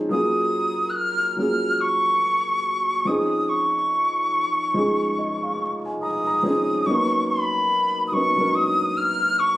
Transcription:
Already playing: F3 C4 C#4 D#4 G#4
0.09 F#3 A#3 C#4 F4 D#6
0.13 G#4
0.90 F#6
0.96 F6
1.37 F#3 A#3 C#4 F4 G#4 F6
1.81 C#6
3.05 F3 C4 C#4 D#4 D#6
3.09 G#4
3.49 C#6
4.74 F3 G#3 C#4 D#4 C#5
4.78 G#4
5.19 D#5
5.43 F5
5.85 G#5
6.02 A#5 D#6
6.27 A#5
6.43 F3 C4 C#4 D#4
6.47 G#4
6.85 F#3 B3 C#4 D#4 C#6
6.90 A#3
7.28 B5
8.08 D#6
8.12 F#3 B3 C#4 D#4 A#4 C#6
8.36 F#3 B3 C#4 D4
8.40 A#4
8.46 D#4
8.55 D#6
8.97 F6
9.39 C#6

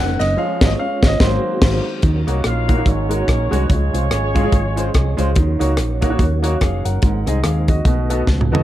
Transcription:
Already playing: F1 C#3 D#3 A#3 C#4 D#4 A#4 F#5
0.19 F#1 D#5, snare, ride, tambourine
0.37 F3 G#3 C#4 F4 G#4 C#5 F5
0.61 G#1, kick, snare, crash
0.66 D#5
0.79 F5
1.03 G#1, kick, snare
1.07 D#5
1.20 G#1 D#3 F#3 A#3 C4 D#4 F#4 C5, kick, snare
1.62 G#1, kick, snare, crash
2.02 D#2 D#3 F#3 A#3 C#4 D#4 F#4 A#4 D#5, kick, closed hi-hat
2.27 C2 A#3 D#4 F#4 C#5, cross-stick, closed hi-hat
2.44 A#1 F4 A#4 C#5 F5, cross-stick, closed hi-hat
2.68 A#3 D#4 F#4 C#5, kick, closed hi-hat
2.76 A#3 D#4 F#4 C#5
2.85 G#1 G#2 G#3 C#4 F#4 G#4 A#4 C#5, kick, closed hi-hat
3.09 G#3 C#4 F#4 A#4, closed hi-hat
3.28 A#1, kick, cross-stick, closed hi-hat
3.51 C2 G#3 C#4 F#4 C#5, cross-stick, closed hi-hat
3.68 C#2 C#3 F3 C#4 F4 G#4 C#5, kick, closed hi-hat
3.93 C2 G#3 C#4 F4 C5, closed hi-hat
4.11 G#1, cross-stick, closed hi-hat
4.35 G#3 C#4 F4 G#4, kick, closed hi-hat
4.43 G#3 C#4 F4 G#4
4.52 G#1, kick, closed hi-hat
4.76 G#3 C#4 F4 C5, closed hi-hat
4.94 C2, kick, cross-stick, closed hi-hat
5.17 C#2 G#3 C#4 F4 C5, cross-stick, closed hi-hat
5.35 D#2 D#3 F#3 A#3 D#4 F#4 A#4 C#5, kick, closed hi-hat
5.59 C#2 A#3 D#4 F#4 C#5, cross-stick, closed hi-hat
5.77 A#1, cross-stick, closed hi-hat
6.01 A#3 D#4 F#4 C#5, kick, closed hi-hat
6.10 A#3 D#4 F#4 C#5
6.19 D#2, kick, closed hi-hat
6.43 A#3 D#4 F#4 C#5, closed hi-hat
6.61 F1 G#4 F5, kick, cross-stick, closed hi-hat
6.85 F#1 A#4 F#5, closed hi-hat
7.02 G#1 G#2 G#3 C4 G#4 C5 D#5, kick, closed hi-hat
7.26 C2 C4 D#4 G#4 D#5, cross-stick, closed hi-hat
7.44 D#2 G#4 F5, cross-stick, closed hi-hat
7.68 F#4 D#5, kick, closed hi-hat
7.85 B1 B2 F#3 A3 B3 F#4 A4 B4, kick, closed hi-hat
8.10 B3 F#4 A4 D#5, closed hi-hat
8.27 C#2, kick, snare
8.41 mid tom
8.51 D#2 B3 F#4 A4 D#5, floor tom

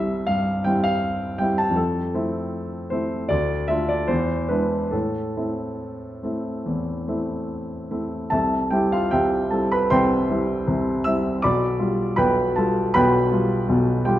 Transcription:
Already playing: C2 G3 C4 E4 C5 E5
0.27 G2 F5
0.64 G3 C4 E4 G5
0.84 F5
1.38 G3 C4 E4 G5
1.58 A5
1.70 F2
1.76 A4
2.14 A3 C4 E4
2.90 A3 C4 E4 C5
3.29 D2 D5
3.68 A3 D4 F4 E5
3.89 D5
4.08 E2 C5
4.49 G#3 D4 E4 B4
4.91 A2 A4
5.37 A3 C4 E4
6.23 A3 C4 E4
6.66 E2
7.08 A3 C4 E4
7.91 A3 C4 E4
8.30 C2 C3 A4 E5 A5
8.70 G3 C4 E4 G4 G5
8.92 F4 F5
9.11 C2 C3 G4 E5 G5
9.51 G3 C4 E4 A4 A5
9.72 B4 B5
9.90 C2 C3 C5 G5 C6
10.29 G3 C4 E4
10.67 C2 C3
11.04 G3 C4 E4 E5 E6
11.42 B1 B2 D5 B5 D6
11.79 G3 F4
12.16 B1 B2 B4 G5 B5
12.56 G3 F4 A4 A5
12.94 B1 B2 B4 G5 B5
13.32 G3 F4
13.69 B1 B2
14.05 G3 F4 G4 G5

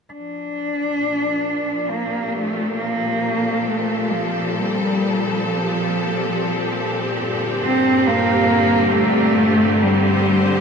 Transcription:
0.13 F3 D4
0.95 A#2
1.89 A#3
1.94 C4
2.12 G4
2.34 A3
2.77 A#3
3.31 A4
3.66 A3
4.12 F3
4.57 G3
5.35 G3
5.45 F3
7.19 G2
7.38 D3
7.60 G3 C4
8.07 A#3
8.93 A3
9.81 G3
10.07 C5

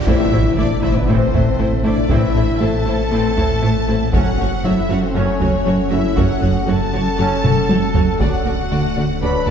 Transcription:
0.06 A1 A2 E3 A3 C4 E4 A4 C5 E5, taiko, impact
0.32 A1 A2 A3 E4 C5
0.57 A1 A2 A3 D4 E4 C5 D5
0.82 A1 A2 A3 E4 C5 E5, taiko rim
0.95 B3 B4
1.07 A1 A2 E3 A3 C4 E4 C5
1.33 A1 A2 A3 E4 C5, taiko low
1.59 A1 A2 A3 E4 C5
1.84 A1 A2 A3 D4 E4 C5 D5
2.09 A1 A2 E3 A3 C4 E4 C5 E5, taiko
2.35 A1 A2 A3 E4 C5
2.60 A1 A2 A3 E4 A4 C5 A5
2.86 A1 A2 A3 E4 C5
3.11 A1 A2 E3 A3 C4 E4 C5
3.37 A1 A2 A3 E4 C5, taiko low
3.62 A1 A2 A3 E4 C5
3.87 A1 A2 A3 E4 C5
4.12 F#1 F#2 F#3 A3 C#4 F#4 A4 C#5 F#5, taiko
4.38 F#1 F#2 A3 F#4 C#5
4.64 F#1 F#2 F#3 A3 C#4 E4 F#4 C#5 E5
4.89 F#1 F#2 F#3 A3 C#4 F#4 C#5 F#5
5.03 C4 C5
5.15 F#1 F#2 F#3 A3 C#4 F#4 C#5
5.39 F#1 F#2 F#3 A3 C#4 F#4 C#5, taiko low
5.65 F#1 F#2 F#3 A3 C#4 F#4 C#5
5.90 F#1 F#2 F#3 A3 C#4 E4 F#4 C#5 E5
6.16 F#1 F#2 F#3 A3 C#4 F#4 C#5 F#5, taiko
6.42 F#1 F#2 A3 F#4 C#5
6.66 F#1 F#2 F#3 A3 C#4 F#4 A4 C#5 A5
6.92 F#1 F#2 F#3 A3 C#4 F#4 C#5
7.17 F#1 F#2 F#3 A3 C#4 F#4 C#5
7.43 F#1 F#2 F#3 A3 C#4 F#4 C#5, taiko mid
7.68 F#1 F#2 F#3 A3 C#4 F#4 C#5, taiko high
7.94 F#1 F#2 F#3 A3 C#4 F#4 C#5, taiko low
8.20 D1 D2 D3 F#3 A3 D4 F#4 A4 D5 F#5, taiko
8.45 D2 A3 F#4 D5
8.71 D2 D3 A3 F#4 D5
8.95 D2 D3 A3 F#4 D5
9.21 D2 D3 F#3 A3 D4 F#4 B4 D5 B5
9.46 D2 A3 F#4 D5 A5, taiko low

